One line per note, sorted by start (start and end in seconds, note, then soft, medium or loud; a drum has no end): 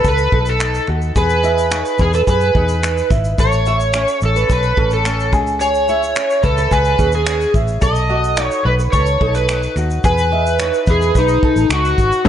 0.00 0.32 D#4 medium
0.00 0.87 F#4 soft
0.00 0.17 B4 medium
0.00 2.00 B4 medium
0.04 0.27 C#2 medium
0.04 1.16 A4 medium
0.04 0.49 B4 medium
0.04 kick medium
0.04 shaker medium
0.18 shaker soft
0.32 0.78 B1 medium
0.32 0.60 D#4 medium
0.32 0.46 A4 medium
0.32 kick medium
0.46 0.87 A4 medium
0.46 shaker soft
0.60 1.43 D#4 medium
0.60 finger snap loud
0.60 shaker medium
0.74 shaker soft
0.87 1.11 D#2 medium
0.87 1.15 F#4 soft
0.87 finger snap soft
1.02 shaker soft
1.16 1.82 E2 medium
1.16 2.26 G#4 medium
1.16 2.03 B4 medium
1.16 kick medium
1.16 shaker medium
1.30 shaker soft
1.43 1.71 E4 soft
1.43 1.57 D#5 medium
1.43 shaker soft
1.58 shaker soft
1.71 2.54 D#4 medium
1.71 1.85 C#5 medium
1.71 finger snap medium
1.71 shaker medium
1.85 shaker medium
1.98 2.22 E2 medium
1.98 2.13 G#4 medium
1.98 3.44 B4 medium
1.98 kick medium
1.98 shaker soft
2.13 2.20 A4 medium
2.13 2.40 B4 medium
2.13 shaker soft
2.27 2.50 F#2 medium
2.27 3.10 G#4 medium
2.27 3.08 B4 medium
2.27 kick medium
2.27 shaker medium
2.41 shaker soft
2.55 3.01 E2 medium
2.55 2.82 D#4 medium
2.55 2.68 G#4 medium
2.55 kick medium
2.69 shaker soft
2.83 3.44 D#4 medium
2.83 finger snap medium
2.83 shaker medium
2.97 shaker soft
3.10 3.33 G#1 medium
3.10 3.67 E4 soft
3.10 finger snap soft
3.10 kick medium
3.10 shaker soft
3.24 shaker soft
3.38 4.04 A1 medium
3.38 4.49 A4 medium
3.38 4.18 C#5 medium
3.38 kick medium
3.38 shaker medium
3.52 shaker soft
3.66 3.94 E4 medium
3.66 3.80 E5 medium
3.66 shaker soft
3.80 shaker medium
3.93 4.78 C#4 medium
3.93 4.07 C#5 medium
3.93 finger snap medium
3.93 shaker medium
4.08 shaker soft
4.21 4.45 A1 medium
4.21 6.43 C#5 medium
4.21 shaker soft
4.25 4.52 A4 medium
4.36 4.62 B4 medium
4.36 shaker soft
4.50 4.72 B1 medium
4.50 5.32 A4 medium
4.50 4.89 B4 medium
4.50 kick medium
4.50 shaker medium
4.63 shaker soft
4.77 5.32 A1 medium
4.77 5.05 C#4 medium
4.77 4.90 A4 medium
4.77 kick medium
4.91 5.31 A4 medium
4.91 shaker soft
5.05 6.16 C#4 medium
5.05 finger snap loud
5.05 shaker medium
5.20 shaker soft
5.32 6.12 C#2 medium
5.32 5.60 G#4 medium
5.32 finger snap soft
5.32 kick medium
5.32 shaker soft
5.47 shaker soft
5.60 6.70 G#4 medium
5.60 6.46 C#5 loud
5.60 shaker medium
5.75 shaker soft
5.88 7.54 E4 medium
5.88 6.01 E5 medium
5.88 shaker soft
6.03 shaker soft
6.16 6.97 C#4 medium
6.16 6.29 C#5 medium
6.16 finger snap loud
6.16 shaker medium
6.30 shaker soft
6.43 6.66 C#2 medium
6.43 6.72 A4 medium
6.43 8.66 B4 medium
6.43 kick medium
6.43 shaker soft
6.58 6.84 B4 medium
6.58 shaker soft
6.71 6.94 C#2 medium
6.71 7.81 G#4 medium
6.71 7.11 B4 loud
6.71 kick medium
6.71 shaker medium
6.85 shaker soft
6.98 7.45 D#2 medium
6.98 7.25 C#4 medium
6.98 7.12 G#4 medium
6.98 kick medium
6.98 shaker soft
7.12 7.53 G#4 medium
7.12 shaker soft
7.26 7.88 C#4 medium
7.26 finger snap loud
7.26 shaker medium
7.41 shaker soft
7.54 7.77 A1 medium
7.54 7.88 E4 soft
7.54 kick medium
7.54 shaker soft
7.68 shaker soft
7.81 8.48 B1 medium
7.81 8.93 A4 medium
7.81 8.45 D#5 medium
7.81 kick medium
7.81 shaker medium
7.95 shaker soft
8.10 9.76 F#4 medium
8.10 8.23 D#5 medium
8.24 shaker medium
8.37 9.21 D#4 medium
8.37 8.51 C#5 medium
8.37 finger snap loud
8.37 shaker medium
8.45 8.68 C#5 medium
8.51 shaker soft
8.65 8.88 B1 medium
8.65 8.73 B4 medium
8.65 10.87 B4 medium
8.79 9.06 B4 medium
8.79 shaker soft
8.92 9.16 C#2 medium
8.92 10.04 A4 medium
8.92 9.36 C#5 medium
8.92 kick medium
8.92 shaker medium
9.06 shaker soft
9.21 9.66 B1 medium
9.21 9.49 D#4 medium
9.21 9.34 A4 medium
9.21 kick medium
9.35 9.73 B4 medium
9.35 shaker soft
9.49 10.35 D#4 medium
9.49 finger snap loud
9.49 shaker medium
9.63 shaker soft
9.76 9.99 D#2 medium
9.76 10.10 F#4 medium
9.76 finger snap soft
9.76 shaker soft
9.90 shaker soft
10.04 10.70 E2 medium
10.04 10.87 G#4 medium
10.04 10.90 B4 loud
10.04 kick loud
10.04 shaker medium
10.18 shaker soft
10.32 11.21 E4 medium
10.32 10.45 D#5 medium
10.46 shaker soft
10.59 11.21 D#4 medium
10.59 10.73 C#5 medium
10.59 finger snap medium
10.59 shaker medium
10.74 shaker soft
10.87 11.10 E2 medium
10.87 11.17 G#4 medium
10.87 11.14 B4 medium
10.87 kick medium
10.87 shaker soft
11.01 11.28 B4 medium
11.01 shaker soft
11.15 11.38 B1 medium
11.15 11.68 D#4 medium
11.15 12.29 B4 medium
11.15 kick medium
11.15 shaker medium
11.28 shaker soft
11.43 11.69 D#4 medium
11.43 11.56 A4 medium
11.43 kick medium
11.56 11.68 A1 medium
11.56 shaker soft
11.69 11.93 C#2 medium
11.69 12.29 D#4 medium
11.69 12.29 F#4 medium
11.69 finger snap loud
11.69 shaker medium
11.85 shaker soft
11.98 12.10 G#1 medium
11.98 12.29 F#4 medium
11.98 kick medium
11.98 shaker soft
12.12 shaker soft
12.25 12.29 A3 medium
12.25 12.29 C#4 medium
12.25 12.29 A4 medium